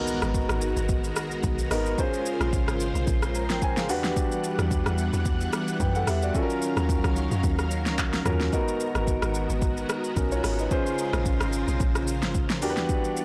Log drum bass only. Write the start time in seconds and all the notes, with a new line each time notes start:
0.22 G#1
0.50 G#1
0.77 G#1
1.44 B1
1.71 G#1
2.41 A#1
2.68 G#1
2.95 B1
3.07 A#1
3.50 G#1
3.89 E2
4.59 E2
4.86 E2
5.13 E2
5.80 F#2
6.07 E2
6.77 D#2
7.04 C#2
7.31 F#2
7.44 D#2
7.86 C#2
8.26 D#2
8.95 G#1
9.22 G#1
9.50 G#1
10.17 B1
10.44 G#1
11.13 A#1
11.41 G#1
11.68 B1
11.80 A#1
12.22 G#1
12.62 E2